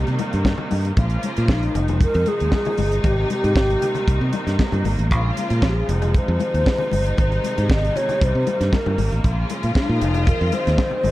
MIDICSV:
0, 0, Header, 1, 6, 480
1, 0, Start_track
1, 0, Tempo, 517241
1, 897, Time_signature, 4, 2, 24, 8
1, 10313, End_track
2, 0, Start_track
2, 0, Title_t, "Alto flute"
2, 0, Program_c, 0, 73
2, 0, Note_on_c, 0, 67, 111
2, 153, Note_off_c, 0, 67, 0
2, 1394, Note_on_c, 0, 63, 100
2, 1890, Note_on_c, 0, 70, 105
2, 1904, Note_off_c, 0, 63, 0
2, 2116, Note_on_c, 0, 68, 102
2, 2130, Note_off_c, 0, 70, 0
2, 2847, Note_on_c, 0, 67, 85
2, 2861, Note_off_c, 0, 68, 0
2, 3075, Note_off_c, 0, 67, 0
2, 3086, Note_on_c, 0, 67, 104
2, 3998, Note_off_c, 0, 67, 0
2, 5266, Note_on_c, 0, 68, 82
2, 5738, Note_on_c, 0, 72, 107
2, 5752, Note_off_c, 0, 68, 0
2, 6678, Note_off_c, 0, 72, 0
2, 6683, Note_on_c, 0, 72, 84
2, 7160, Note_on_c, 0, 75, 101
2, 7174, Note_off_c, 0, 72, 0
2, 7390, Note_on_c, 0, 73, 103
2, 7404, Note_off_c, 0, 75, 0
2, 7645, Note_on_c, 0, 72, 97
2, 7659, Note_off_c, 0, 73, 0
2, 8110, Note_off_c, 0, 72, 0
2, 8121, Note_on_c, 0, 70, 84
2, 8450, Note_off_c, 0, 70, 0
2, 9075, Note_on_c, 0, 63, 95
2, 9546, Note_on_c, 0, 70, 92
2, 9560, Note_off_c, 0, 63, 0
2, 9781, Note_on_c, 0, 72, 101
2, 9795, Note_off_c, 0, 70, 0
2, 10313, Note_off_c, 0, 72, 0
2, 10313, End_track
3, 0, Start_track
3, 0, Title_t, "String section"
3, 0, Program_c, 1, 48
3, 0, Note_on_c, 1, 48, 77
3, 0, Note_on_c, 1, 51, 75
3, 0, Note_on_c, 1, 55, 71
3, 0, Note_on_c, 1, 58, 65
3, 0, Note_on_c, 1, 63, 76
3, 867, Note_off_c, 1, 48, 0
3, 867, Note_off_c, 1, 63, 0
3, 882, Note_off_c, 1, 51, 0
3, 883, Note_off_c, 1, 55, 0
3, 885, Note_off_c, 1, 58, 0
3, 909, Note_on_c, 1, 65, 78
3, 910, Note_on_c, 1, 56, 67
3, 911, Note_on_c, 1, 58, 65
3, 912, Note_on_c, 1, 53, 67
3, 915, Note_on_c, 1, 49, 71
3, 1616, Note_off_c, 1, 53, 0
3, 1618, Note_off_c, 1, 65, 0
3, 1620, Note_off_c, 1, 58, 0
3, 1621, Note_off_c, 1, 49, 0
3, 1623, Note_on_c, 1, 63, 79
3, 1627, Note_on_c, 1, 53, 60
3, 1629, Note_on_c, 1, 48, 78
3, 1630, Note_on_c, 1, 51, 65
3, 2814, Note_off_c, 1, 53, 0
3, 2815, Note_off_c, 1, 51, 0
3, 2832, Note_on_c, 1, 51, 71
3, 2837, Note_on_c, 1, 55, 72
3, 3761, Note_off_c, 1, 56, 0
3, 3789, Note_on_c, 1, 58, 73
3, 4714, Note_off_c, 1, 63, 0
3, 4716, Note_off_c, 1, 48, 0
3, 4729, Note_off_c, 1, 51, 0
3, 4731, Note_off_c, 1, 55, 0
3, 4753, Note_on_c, 1, 53, 72
3, 4753, Note_on_c, 1, 56, 66
3, 4756, Note_on_c, 1, 65, 82
3, 4758, Note_on_c, 1, 49, 75
3, 5449, Note_off_c, 1, 58, 0
3, 5462, Note_off_c, 1, 65, 0
3, 5463, Note_off_c, 1, 49, 0
3, 5476, Note_on_c, 1, 48, 73
3, 5479, Note_on_c, 1, 51, 68
3, 5480, Note_on_c, 1, 63, 76
3, 6646, Note_off_c, 1, 53, 0
3, 6646, Note_off_c, 1, 56, 0
3, 6667, Note_on_c, 1, 56, 69
3, 6670, Note_on_c, 1, 55, 73
3, 7612, Note_off_c, 1, 56, 0
3, 7638, Note_on_c, 1, 58, 73
3, 8551, Note_off_c, 1, 48, 0
3, 8553, Note_off_c, 1, 51, 0
3, 8553, Note_off_c, 1, 63, 0
3, 8561, Note_off_c, 1, 55, 0
3, 8585, Note_on_c, 1, 53, 71
3, 8587, Note_on_c, 1, 49, 75
3, 8588, Note_on_c, 1, 65, 92
3, 8589, Note_on_c, 1, 56, 69
3, 9286, Note_off_c, 1, 58, 0
3, 9286, Note_on_c, 1, 51, 80
3, 9286, Note_on_c, 1, 60, 61
3, 9292, Note_off_c, 1, 49, 0
3, 10313, Note_off_c, 1, 51, 0
3, 10313, Note_off_c, 1, 53, 0
3, 10313, Note_off_c, 1, 56, 0
3, 10313, Note_off_c, 1, 60, 0
3, 10313, Note_off_c, 1, 65, 0
3, 10313, End_track
4, 0, Start_track
4, 0, Title_t, "Fingered electric bass"
4, 0, Program_c, 2, 33
4, 74, Note_on_c, 2, 48, 92
4, 153, Note_off_c, 2, 48, 0
4, 313, Note_on_c, 2, 43, 82
4, 487, Note_off_c, 2, 43, 0
4, 669, Note_on_c, 2, 43, 71
4, 843, Note_off_c, 2, 43, 0
4, 901, Note_on_c, 2, 34, 100
4, 1078, Note_off_c, 2, 34, 0
4, 1279, Note_on_c, 2, 46, 86
4, 1358, Note_off_c, 2, 46, 0
4, 1376, Note_on_c, 2, 34, 92
4, 1556, Note_off_c, 2, 34, 0
4, 1624, Note_on_c, 2, 29, 94
4, 1895, Note_off_c, 2, 29, 0
4, 1994, Note_on_c, 2, 41, 103
4, 2075, Note_off_c, 2, 41, 0
4, 2238, Note_on_c, 2, 39, 73
4, 2318, Note_off_c, 2, 39, 0
4, 2584, Note_on_c, 2, 31, 83
4, 2761, Note_off_c, 2, 31, 0
4, 2824, Note_on_c, 2, 32, 117
4, 3001, Note_off_c, 2, 32, 0
4, 3193, Note_on_c, 2, 44, 95
4, 3275, Note_off_c, 2, 44, 0
4, 3301, Note_on_c, 2, 32, 90
4, 3480, Note_off_c, 2, 32, 0
4, 3785, Note_on_c, 2, 36, 104
4, 3879, Note_off_c, 2, 36, 0
4, 3908, Note_on_c, 2, 48, 108
4, 3993, Note_off_c, 2, 48, 0
4, 4146, Note_on_c, 2, 43, 77
4, 4231, Note_off_c, 2, 43, 0
4, 4383, Note_on_c, 2, 43, 77
4, 4469, Note_off_c, 2, 43, 0
4, 4493, Note_on_c, 2, 32, 77
4, 4591, Note_off_c, 2, 32, 0
4, 4626, Note_on_c, 2, 33, 74
4, 4745, Note_off_c, 2, 33, 0
4, 4745, Note_on_c, 2, 34, 100
4, 4922, Note_off_c, 2, 34, 0
4, 5109, Note_on_c, 2, 46, 80
4, 5193, Note_off_c, 2, 46, 0
4, 5220, Note_on_c, 2, 34, 95
4, 5399, Note_off_c, 2, 34, 0
4, 5463, Note_on_c, 2, 29, 94
4, 5735, Note_off_c, 2, 29, 0
4, 5830, Note_on_c, 2, 41, 100
4, 5913, Note_off_c, 2, 41, 0
4, 6070, Note_on_c, 2, 39, 75
4, 6153, Note_off_c, 2, 39, 0
4, 6425, Note_on_c, 2, 31, 81
4, 6601, Note_off_c, 2, 31, 0
4, 6668, Note_on_c, 2, 32, 98
4, 6843, Note_off_c, 2, 32, 0
4, 7034, Note_on_c, 2, 44, 88
4, 7115, Note_off_c, 2, 44, 0
4, 7145, Note_on_c, 2, 32, 91
4, 7320, Note_off_c, 2, 32, 0
4, 7626, Note_on_c, 2, 36, 102
4, 7717, Note_off_c, 2, 36, 0
4, 7749, Note_on_c, 2, 48, 99
4, 7831, Note_off_c, 2, 48, 0
4, 7987, Note_on_c, 2, 43, 90
4, 8069, Note_off_c, 2, 43, 0
4, 8225, Note_on_c, 2, 43, 82
4, 8308, Note_off_c, 2, 43, 0
4, 8334, Note_on_c, 2, 32, 87
4, 8429, Note_off_c, 2, 32, 0
4, 8466, Note_on_c, 2, 33, 85
4, 8548, Note_off_c, 2, 33, 0
4, 8577, Note_on_c, 2, 34, 96
4, 8754, Note_off_c, 2, 34, 0
4, 8943, Note_on_c, 2, 46, 78
4, 9026, Note_off_c, 2, 46, 0
4, 9182, Note_on_c, 2, 46, 96
4, 9265, Note_off_c, 2, 46, 0
4, 9296, Note_on_c, 2, 29, 98
4, 9566, Note_off_c, 2, 29, 0
4, 9660, Note_on_c, 2, 41, 97
4, 9743, Note_off_c, 2, 41, 0
4, 9902, Note_on_c, 2, 39, 94
4, 9984, Note_off_c, 2, 39, 0
4, 10246, Note_on_c, 2, 31, 78
4, 10313, Note_off_c, 2, 31, 0
4, 10313, End_track
5, 0, Start_track
5, 0, Title_t, "Muted fingered electric bass strokes"
5, 9052, Note_on_c, 9, 29, 50
5, 9145, Note_off_c, 9, 29, 0
5, 10313, End_track
6, 0, Start_track
6, 0, Title_t, "Drums"
6, 64, Note_on_c, 9, 42, 34
6, 157, Note_off_c, 9, 42, 0
6, 174, Note_on_c, 9, 42, 57
6, 179, Note_on_c, 9, 62, 28
6, 179, Note_on_c, 9, 63, 69
6, 267, Note_off_c, 9, 42, 0
6, 272, Note_off_c, 9, 62, 0
6, 272, Note_off_c, 9, 63, 0
6, 305, Note_on_c, 9, 42, 42
6, 397, Note_off_c, 9, 42, 0
6, 417, Note_on_c, 9, 36, 91
6, 417, Note_on_c, 9, 62, 38
6, 417, Note_on_c, 9, 63, 74
6, 424, Note_on_c, 9, 38, 93
6, 509, Note_off_c, 9, 36, 0
6, 510, Note_off_c, 9, 62, 0
6, 510, Note_off_c, 9, 63, 0
6, 516, Note_off_c, 9, 38, 0
6, 534, Note_on_c, 9, 64, 76
6, 626, Note_off_c, 9, 64, 0
6, 657, Note_on_c, 9, 62, 32
6, 657, Note_on_c, 9, 63, 69
6, 659, Note_on_c, 9, 46, 61
6, 750, Note_off_c, 9, 62, 0
6, 750, Note_off_c, 9, 63, 0
6, 752, Note_off_c, 9, 46, 0
6, 786, Note_on_c, 9, 42, 47
6, 879, Note_off_c, 9, 42, 0
6, 898, Note_on_c, 9, 42, 66
6, 900, Note_on_c, 9, 36, 102
6, 910, Note_on_c, 9, 62, 39
6, 991, Note_off_c, 9, 42, 0
6, 993, Note_off_c, 9, 36, 0
6, 1003, Note_off_c, 9, 62, 0
6, 1017, Note_on_c, 9, 42, 35
6, 1110, Note_off_c, 9, 42, 0
6, 1141, Note_on_c, 9, 42, 67
6, 1148, Note_on_c, 9, 63, 54
6, 1234, Note_off_c, 9, 42, 0
6, 1241, Note_off_c, 9, 63, 0
6, 1268, Note_on_c, 9, 42, 42
6, 1360, Note_off_c, 9, 42, 0
6, 1377, Note_on_c, 9, 36, 110
6, 1380, Note_on_c, 9, 62, 41
6, 1385, Note_on_c, 9, 38, 111
6, 1470, Note_off_c, 9, 36, 0
6, 1472, Note_off_c, 9, 62, 0
6, 1478, Note_off_c, 9, 38, 0
6, 1511, Note_on_c, 9, 42, 34
6, 1604, Note_off_c, 9, 42, 0
6, 1625, Note_on_c, 9, 42, 59
6, 1626, Note_on_c, 9, 64, 61
6, 1718, Note_off_c, 9, 42, 0
6, 1718, Note_off_c, 9, 64, 0
6, 1746, Note_on_c, 9, 42, 42
6, 1755, Note_on_c, 9, 64, 67
6, 1839, Note_off_c, 9, 42, 0
6, 1848, Note_off_c, 9, 64, 0
6, 1861, Note_on_c, 9, 36, 115
6, 1867, Note_on_c, 9, 42, 78
6, 1868, Note_on_c, 9, 62, 30
6, 1954, Note_off_c, 9, 36, 0
6, 1960, Note_off_c, 9, 42, 0
6, 1960, Note_off_c, 9, 62, 0
6, 1989, Note_on_c, 9, 42, 35
6, 2081, Note_off_c, 9, 42, 0
6, 2096, Note_on_c, 9, 42, 60
6, 2107, Note_on_c, 9, 63, 66
6, 2189, Note_off_c, 9, 42, 0
6, 2200, Note_off_c, 9, 63, 0
6, 2230, Note_on_c, 9, 42, 46
6, 2323, Note_off_c, 9, 42, 0
6, 2336, Note_on_c, 9, 38, 91
6, 2337, Note_on_c, 9, 36, 91
6, 2344, Note_on_c, 9, 62, 33
6, 2344, Note_on_c, 9, 63, 82
6, 2429, Note_off_c, 9, 38, 0
6, 2430, Note_off_c, 9, 36, 0
6, 2437, Note_off_c, 9, 62, 0
6, 2437, Note_off_c, 9, 63, 0
6, 2459, Note_on_c, 9, 42, 33
6, 2471, Note_on_c, 9, 64, 85
6, 2552, Note_off_c, 9, 42, 0
6, 2564, Note_off_c, 9, 64, 0
6, 2575, Note_on_c, 9, 46, 62
6, 2583, Note_on_c, 9, 62, 34
6, 2583, Note_on_c, 9, 63, 67
6, 2668, Note_off_c, 9, 46, 0
6, 2676, Note_off_c, 9, 62, 0
6, 2676, Note_off_c, 9, 63, 0
6, 2708, Note_on_c, 9, 42, 44
6, 2800, Note_off_c, 9, 42, 0
6, 2819, Note_on_c, 9, 42, 67
6, 2821, Note_on_c, 9, 36, 104
6, 2829, Note_on_c, 9, 62, 38
6, 2912, Note_off_c, 9, 42, 0
6, 2914, Note_off_c, 9, 36, 0
6, 2922, Note_off_c, 9, 62, 0
6, 3063, Note_on_c, 9, 42, 64
6, 3067, Note_on_c, 9, 62, 33
6, 3067, Note_on_c, 9, 63, 44
6, 3156, Note_off_c, 9, 42, 0
6, 3159, Note_off_c, 9, 62, 0
6, 3159, Note_off_c, 9, 63, 0
6, 3192, Note_on_c, 9, 42, 45
6, 3285, Note_off_c, 9, 42, 0
6, 3300, Note_on_c, 9, 36, 111
6, 3306, Note_on_c, 9, 62, 37
6, 3309, Note_on_c, 9, 38, 114
6, 3393, Note_off_c, 9, 36, 0
6, 3399, Note_off_c, 9, 62, 0
6, 3402, Note_off_c, 9, 38, 0
6, 3435, Note_on_c, 9, 42, 32
6, 3528, Note_off_c, 9, 42, 0
6, 3545, Note_on_c, 9, 42, 61
6, 3548, Note_on_c, 9, 62, 30
6, 3548, Note_on_c, 9, 64, 65
6, 3638, Note_off_c, 9, 42, 0
6, 3640, Note_off_c, 9, 62, 0
6, 3640, Note_off_c, 9, 64, 0
6, 3663, Note_on_c, 9, 64, 72
6, 3668, Note_on_c, 9, 42, 43
6, 3755, Note_off_c, 9, 64, 0
6, 3761, Note_off_c, 9, 42, 0
6, 3783, Note_on_c, 9, 36, 124
6, 3787, Note_on_c, 9, 42, 80
6, 3875, Note_off_c, 9, 36, 0
6, 3879, Note_off_c, 9, 42, 0
6, 4016, Note_on_c, 9, 42, 58
6, 4021, Note_on_c, 9, 62, 31
6, 4021, Note_on_c, 9, 63, 63
6, 4108, Note_off_c, 9, 42, 0
6, 4113, Note_off_c, 9, 62, 0
6, 4113, Note_off_c, 9, 63, 0
6, 4151, Note_on_c, 9, 42, 44
6, 4157, Note_on_c, 9, 38, 31
6, 4244, Note_off_c, 9, 42, 0
6, 4250, Note_off_c, 9, 38, 0
6, 4261, Note_on_c, 9, 36, 100
6, 4265, Note_on_c, 9, 38, 98
6, 4269, Note_on_c, 9, 62, 39
6, 4269, Note_on_c, 9, 63, 83
6, 4354, Note_off_c, 9, 36, 0
6, 4358, Note_off_c, 9, 38, 0
6, 4362, Note_off_c, 9, 62, 0
6, 4362, Note_off_c, 9, 63, 0
6, 4381, Note_on_c, 9, 64, 76
6, 4391, Note_on_c, 9, 42, 32
6, 4474, Note_off_c, 9, 64, 0
6, 4484, Note_off_c, 9, 42, 0
6, 4501, Note_on_c, 9, 46, 60
6, 4503, Note_on_c, 9, 62, 35
6, 4503, Note_on_c, 9, 63, 75
6, 4594, Note_off_c, 9, 46, 0
6, 4596, Note_off_c, 9, 62, 0
6, 4596, Note_off_c, 9, 63, 0
6, 4630, Note_on_c, 9, 42, 48
6, 4722, Note_off_c, 9, 42, 0
6, 4742, Note_on_c, 9, 42, 61
6, 4743, Note_on_c, 9, 36, 95
6, 4835, Note_off_c, 9, 36, 0
6, 4835, Note_off_c, 9, 42, 0
6, 4984, Note_on_c, 9, 42, 69
6, 4989, Note_on_c, 9, 63, 43
6, 5076, Note_off_c, 9, 42, 0
6, 5081, Note_off_c, 9, 63, 0
6, 5105, Note_on_c, 9, 42, 44
6, 5198, Note_off_c, 9, 42, 0
6, 5217, Note_on_c, 9, 36, 114
6, 5223, Note_on_c, 9, 38, 109
6, 5224, Note_on_c, 9, 62, 39
6, 5310, Note_off_c, 9, 36, 0
6, 5316, Note_off_c, 9, 38, 0
6, 5317, Note_off_c, 9, 62, 0
6, 5465, Note_on_c, 9, 42, 60
6, 5471, Note_on_c, 9, 64, 57
6, 5557, Note_off_c, 9, 42, 0
6, 5564, Note_off_c, 9, 64, 0
6, 5586, Note_on_c, 9, 42, 46
6, 5586, Note_on_c, 9, 64, 73
6, 5679, Note_off_c, 9, 42, 0
6, 5679, Note_off_c, 9, 64, 0
6, 5701, Note_on_c, 9, 62, 30
6, 5703, Note_on_c, 9, 36, 115
6, 5707, Note_on_c, 9, 42, 66
6, 5794, Note_off_c, 9, 62, 0
6, 5795, Note_off_c, 9, 36, 0
6, 5800, Note_off_c, 9, 42, 0
6, 5937, Note_on_c, 9, 62, 30
6, 5937, Note_on_c, 9, 63, 67
6, 5943, Note_on_c, 9, 42, 55
6, 6030, Note_off_c, 9, 62, 0
6, 6030, Note_off_c, 9, 63, 0
6, 6036, Note_off_c, 9, 42, 0
6, 6074, Note_on_c, 9, 42, 46
6, 6167, Note_off_c, 9, 42, 0
6, 6183, Note_on_c, 9, 36, 97
6, 6186, Note_on_c, 9, 63, 78
6, 6190, Note_on_c, 9, 38, 97
6, 6276, Note_off_c, 9, 36, 0
6, 6279, Note_off_c, 9, 63, 0
6, 6283, Note_off_c, 9, 38, 0
6, 6296, Note_on_c, 9, 64, 71
6, 6389, Note_off_c, 9, 64, 0
6, 6417, Note_on_c, 9, 62, 37
6, 6417, Note_on_c, 9, 63, 73
6, 6429, Note_on_c, 9, 46, 62
6, 6510, Note_off_c, 9, 62, 0
6, 6510, Note_off_c, 9, 63, 0
6, 6522, Note_off_c, 9, 46, 0
6, 6554, Note_on_c, 9, 42, 43
6, 6647, Note_off_c, 9, 42, 0
6, 6658, Note_on_c, 9, 62, 37
6, 6664, Note_on_c, 9, 42, 59
6, 6666, Note_on_c, 9, 36, 101
6, 6751, Note_off_c, 9, 62, 0
6, 6757, Note_off_c, 9, 42, 0
6, 6758, Note_off_c, 9, 36, 0
6, 6791, Note_on_c, 9, 42, 32
6, 6884, Note_off_c, 9, 42, 0
6, 6903, Note_on_c, 9, 62, 30
6, 6903, Note_on_c, 9, 63, 47
6, 6909, Note_on_c, 9, 42, 69
6, 6996, Note_off_c, 9, 62, 0
6, 6996, Note_off_c, 9, 63, 0
6, 7002, Note_off_c, 9, 42, 0
6, 7032, Note_on_c, 9, 42, 41
6, 7124, Note_off_c, 9, 42, 0
6, 7142, Note_on_c, 9, 36, 118
6, 7142, Note_on_c, 9, 62, 38
6, 7155, Note_on_c, 9, 38, 115
6, 7235, Note_off_c, 9, 36, 0
6, 7235, Note_off_c, 9, 62, 0
6, 7248, Note_off_c, 9, 38, 0
6, 7281, Note_on_c, 9, 42, 38
6, 7374, Note_off_c, 9, 42, 0
6, 7385, Note_on_c, 9, 62, 28
6, 7385, Note_on_c, 9, 64, 63
6, 7392, Note_on_c, 9, 42, 54
6, 7477, Note_off_c, 9, 62, 0
6, 7477, Note_off_c, 9, 64, 0
6, 7485, Note_off_c, 9, 42, 0
6, 7507, Note_on_c, 9, 64, 74
6, 7511, Note_on_c, 9, 42, 41
6, 7599, Note_off_c, 9, 64, 0
6, 7603, Note_off_c, 9, 42, 0
6, 7622, Note_on_c, 9, 62, 32
6, 7623, Note_on_c, 9, 36, 123
6, 7630, Note_on_c, 9, 42, 72
6, 7715, Note_off_c, 9, 62, 0
6, 7716, Note_off_c, 9, 36, 0
6, 7723, Note_off_c, 9, 42, 0
6, 7858, Note_on_c, 9, 42, 53
6, 7862, Note_on_c, 9, 62, 28
6, 7862, Note_on_c, 9, 63, 65
6, 7951, Note_off_c, 9, 42, 0
6, 7954, Note_off_c, 9, 62, 0
6, 7954, Note_off_c, 9, 63, 0
6, 7989, Note_on_c, 9, 42, 44
6, 7995, Note_on_c, 9, 38, 31
6, 8082, Note_off_c, 9, 42, 0
6, 8088, Note_off_c, 9, 38, 0
6, 8098, Note_on_c, 9, 36, 100
6, 8103, Note_on_c, 9, 38, 90
6, 8105, Note_on_c, 9, 62, 39
6, 8105, Note_on_c, 9, 63, 81
6, 8191, Note_off_c, 9, 36, 0
6, 8196, Note_off_c, 9, 38, 0
6, 8198, Note_off_c, 9, 62, 0
6, 8198, Note_off_c, 9, 63, 0
6, 8223, Note_on_c, 9, 64, 79
6, 8316, Note_off_c, 9, 64, 0
6, 8336, Note_on_c, 9, 62, 37
6, 8336, Note_on_c, 9, 63, 71
6, 8340, Note_on_c, 9, 46, 66
6, 8429, Note_off_c, 9, 62, 0
6, 8429, Note_off_c, 9, 63, 0
6, 8432, Note_off_c, 9, 46, 0
6, 8466, Note_on_c, 9, 42, 41
6, 8559, Note_off_c, 9, 42, 0
6, 8576, Note_on_c, 9, 42, 66
6, 8577, Note_on_c, 9, 36, 96
6, 8669, Note_off_c, 9, 42, 0
6, 8670, Note_off_c, 9, 36, 0
6, 8812, Note_on_c, 9, 42, 69
6, 8819, Note_on_c, 9, 62, 32
6, 8819, Note_on_c, 9, 63, 51
6, 8905, Note_off_c, 9, 42, 0
6, 8911, Note_off_c, 9, 62, 0
6, 8911, Note_off_c, 9, 63, 0
6, 8936, Note_on_c, 9, 42, 46
6, 9029, Note_off_c, 9, 42, 0
6, 9050, Note_on_c, 9, 36, 112
6, 9053, Note_on_c, 9, 62, 37
6, 9060, Note_on_c, 9, 38, 109
6, 9143, Note_off_c, 9, 36, 0
6, 9146, Note_off_c, 9, 62, 0
6, 9153, Note_off_c, 9, 38, 0
6, 9293, Note_on_c, 9, 42, 62
6, 9296, Note_on_c, 9, 64, 66
6, 9386, Note_off_c, 9, 42, 0
6, 9389, Note_off_c, 9, 64, 0
6, 9413, Note_on_c, 9, 64, 72
6, 9416, Note_on_c, 9, 42, 43
6, 9505, Note_off_c, 9, 64, 0
6, 9508, Note_off_c, 9, 42, 0
6, 9523, Note_on_c, 9, 62, 31
6, 9530, Note_on_c, 9, 36, 117
6, 9538, Note_on_c, 9, 42, 76
6, 9616, Note_off_c, 9, 62, 0
6, 9623, Note_off_c, 9, 36, 0
6, 9631, Note_off_c, 9, 42, 0
6, 9763, Note_on_c, 9, 42, 60
6, 9768, Note_on_c, 9, 63, 68
6, 9856, Note_off_c, 9, 42, 0
6, 9860, Note_off_c, 9, 63, 0
6, 9900, Note_on_c, 9, 42, 42
6, 9907, Note_on_c, 9, 38, 31
6, 9993, Note_off_c, 9, 42, 0
6, 9999, Note_off_c, 9, 38, 0
6, 10006, Note_on_c, 9, 36, 100
6, 10006, Note_on_c, 9, 62, 40
6, 10006, Note_on_c, 9, 63, 80
6, 10008, Note_on_c, 9, 38, 100
6, 10098, Note_off_c, 9, 62, 0
6, 10098, Note_off_c, 9, 63, 0
6, 10099, Note_off_c, 9, 36, 0
6, 10101, Note_off_c, 9, 38, 0
6, 10125, Note_on_c, 9, 64, 74
6, 10218, Note_off_c, 9, 64, 0
6, 10241, Note_on_c, 9, 62, 35
6, 10241, Note_on_c, 9, 63, 80
6, 10249, Note_on_c, 9, 46, 64
6, 10313, Note_off_c, 9, 46, 0
6, 10313, Note_off_c, 9, 62, 0
6, 10313, Note_off_c, 9, 63, 0
6, 10313, End_track
0, 0, End_of_file